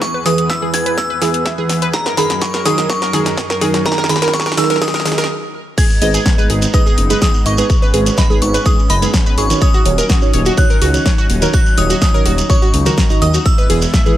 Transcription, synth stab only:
0.26 E3 E4 G#4 B4
0.62 E3 E4 G#4 B4
1.22 E3 E4 G#4 B4
1.58 E3 E4 G#4 B4
2.17 D#3 D#4 G#4 A#4
2.66 D#3 D#4 G#4 A#4
3.14 D#3 D#4 G#4 A#4
3.62 D#3 D#4 G#4 A#4
3.86 D#3 D#4 G#4 A#4
4.10 D#3 D#4 G#4 A#4
4.34 D#3 D#4 G#4 A#4
4.58 D#3 D#4 G#4 A#4
4.82 D#3 D#4 G#4 A#4
5.06 D#3 D#4 G#4 A#4
6.02 G#3 D#4 G#4 B4
6.38 G#3 D#4 G#4 B4
6.74 G#3 D#4 G#4 B4
7.10 G#3 D#4 G#4 B4
7.58 G#3 D#4 G#4 B4
7.94 G#3 D#4 G#4 B4
8.30 G#3 D#4 G#4 B4
8.66 G#3 D#4 G#4 B4
9.02 G#3 D#4 G#4 B4
9.50 D#3 D#4 F#4 C#5
9.86 D#3 D#4 F#4 C#5
10.22 D#3 D#4 F#4 C#5
10.58 D#3 D#4 F#4 C#5
10.94 D#3 D#4 F#4 C#5
11.42 D#3 D#4 F#4 C#5
11.78 D#3 D#4 F#4 C#5
12.14 D#3 D#4 F#4 C#5
12.50 D#3 D#4 F#4 C#5
12.86 D#3 D#4 F#4 A#4
13.10 D#3 D#4 F#4 D#5
13.70 E3 E4 G#4 B4
14.06 E3 E4 G#4 B4

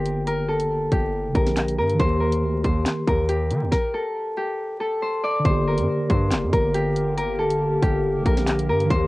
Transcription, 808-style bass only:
Already playing: G1
0.92 G1
1.25 F1
1.35 A#1
1.78 G2
2.00 D#2
2.43 D2
2.64 D#2
3.08 D#2
3.51 D#3
3.62 D#2
5.45 G1
5.78 G2
6.10 G2
6.31 F1
6.43 G2
6.53 G1
7.82 G1
8.15 F1
8.25 A#1
8.69 G2
8.90 D#2

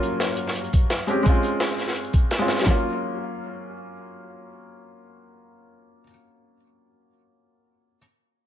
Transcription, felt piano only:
Already playing: F3 F#3 A#3 C#4 F4 F#4
1.07 G#3 C4 C#4 G4
1.23 G#3 C4
1.27 C#4 F4
2.38 G#3 C4 C#4 F4
2.61 F#3 A#3
2.68 C#4 F4

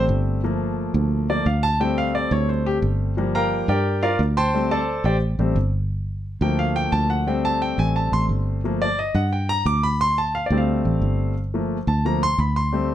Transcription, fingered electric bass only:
0.09 G1
0.94 D2
1.46 D2
2.31 D2
2.82 G1
3.68 G2
4.19 D2
5.04 A1
5.39 A1
5.56 G1
6.41 D2
6.93 D2
7.78 A1
8.12 A1
8.29 G1
9.15 G2
9.65 D2
10.50 D2
10.85 A1
11.02 G1
11.87 D2
12.38 D2

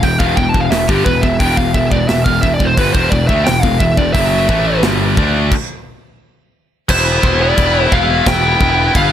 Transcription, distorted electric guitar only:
0.03 E2 B2
0.20 E2 B2
0.38 E2 B2
0.54 E2 B2
0.72 E2 B2
0.89 G2 D3
1.07 E2 B2
1.23 E2 B2
1.40 E2 B2
1.58 E2 B2
1.76 E2 B2
1.92 E2 B2
2.10 E2 B2
2.27 E2 B2
2.44 E2 B2
2.62 E2 B2
2.78 G2 D3
2.95 E2 B2
3.13 E2 B2
3.29 D3 A3
3.46 E2 B2
3.64 E2 B2
3.81 E2 B2
3.98 E2 B2
4.15 F#2 C#3 F#3
4.49 A2 E3 A3
4.83 G2 D3 G3
5.18 D3 A3 D4
6.89 B3 E4
6.96 B3 E4
7.04 B3 E4
7.12 B3 E4
7.20 B3 E4
7.27 B3 E4
7.35 B3 E4
7.42 B3 E4
7.50 B3 E4
7.56 B3 E4
7.65 B3 E4
7.73 B3 E4
7.80 B3 E4
7.87 B3 E4
7.95 B3 E4
8.03 B3 E4
8.10 B3 E4
8.18 B3 E4
8.26 B3 E4
8.33 B3 E4
8.42 B3 E4
8.48 B3 E4
8.56 B3 E4
8.64 B3 E4
8.71 B3 E4
8.78 B3 E4
8.86 B3 E4
8.93 B3 E4
9.02 B3 E4

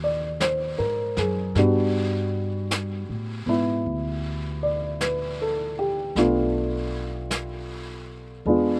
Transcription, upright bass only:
Already playing: D#2
0.79 G#2
1.17 F#2
1.55 G2
3.09 A2
3.46 G#2
3.86 D2
6.15 B1
8.46 E2

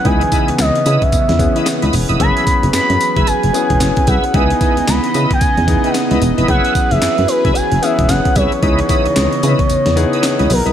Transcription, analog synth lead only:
0.06 G#5
0.60 D#5
1.02 E5
2.20 B5
2.74 B5
3.27 G#5
4.08 F#5
4.34 G#5
4.89 B5
5.33 G#5
5.94 F#5
6.48 F#5
6.91 E5
7.28 B4
7.54 G#5
7.82 E5
8.09 F#5
8.36 C#5
10.52 A#4

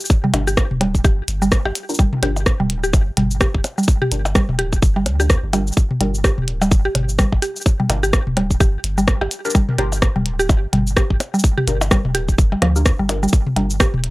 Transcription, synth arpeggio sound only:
0.24 G3
0.47 G4
0.81 G3
1.04 G4
1.42 G3
1.65 G4
1.99 G3
2.23 G4
2.60 G3
2.84 G4
3.17 G3
3.41 G4
3.78 G3
4.02 G4
4.35 G3
4.59 G4
4.96 G3
5.20 G4
5.53 G3
6.01 G3
6.24 G4
6.62 G3
6.85 G4
7.19 G3
7.42 G4
7.80 G3
8.03 G4
8.37 G3
8.60 G4
8.98 G3
9.21 G4
9.55 G3
9.78 G4
10.16 G3
10.39 G4
10.73 G3
10.96 G4
11.34 G3
11.58 G4
11.91 G3
12.15 G4
12.52 G3
12.62 F3
12.99 G3
13.23 G3
13.56 G3
13.80 G4

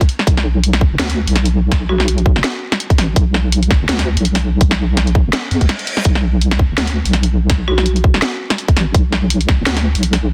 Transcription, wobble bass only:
0.27 B1
0.91 F#1
0.99 D2
1.27 B1
2.36 F#1
2.98 A1
3.16 B1
3.81 F#1
3.89 D2
4.17 B1
5.25 F#1
5.51 E2
5.61 C#2
6.05 B1
6.69 F#1
6.77 D2
7.06 B1
8.14 F#1
8.76 A1
8.94 B1
9.59 F#1
9.67 D2
9.95 B1

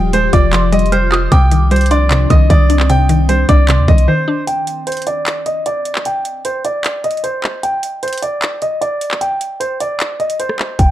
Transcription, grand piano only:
Already playing: G5
0.14 C5
0.33 D5
0.72 D#5
0.92 C5
1.32 G5
1.71 C5
1.91 D5
2.31 D#5
2.50 D5
2.90 G5
3.29 C5
3.49 D5
3.88 D#5
4.08 C5
4.47 G5
4.87 C5
5.07 D5
5.46 D#5
5.66 D5
6.06 G5
6.45 C5
6.65 D5
7.04 D#5
7.24 C5
7.63 G5
8.03 C5
8.22 D5
8.62 D#5
8.81 D5
9.21 G5
9.60 C5
9.80 D5
10.20 D#5
10.40 C5
10.79 G5

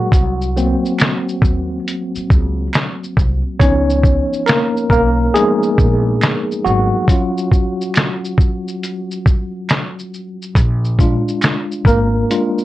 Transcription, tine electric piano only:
Already playing: F#3 G#3 F#4 G#4
0.56 F#3 A#3 C4
3.60 F3 B3 C#4 D#4 C#5
4.46 A#3 A#4
4.91 A#3 A#4
5.34 F3 G#3 B3 D#4 G#4
6.65 F#3 F#4
7.08 F#3 C#4 F4
10.99 G#3 D4 F4
11.87 A#3 A#4
12.30 G#3 D4 F4

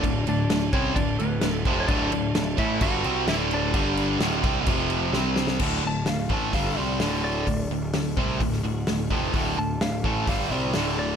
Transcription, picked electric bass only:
0.03 D1
0.26 D1
0.49 D1
0.73 C2
0.95 D1
1.19 D1
1.41 D1
1.65 F1
1.89 D1
2.12 D1
2.36 D1
2.58 A1
2.81 G1
3.05 C2
3.28 D1
3.74 G1
4.20 D1
4.43 C2
4.67 F1
5.13 C2
5.60 D1
5.84 D1
6.07 D1
6.30 A1
6.53 G1
6.78 C2
7.01 D1
7.47 D1
7.70 D1
7.93 D1
8.17 C2
8.40 D1
8.63 D1
8.87 D1
9.10 F1
9.34 D1
9.57 D1
9.80 D1
10.04 A1
10.27 G1
10.50 C2
10.75 D1

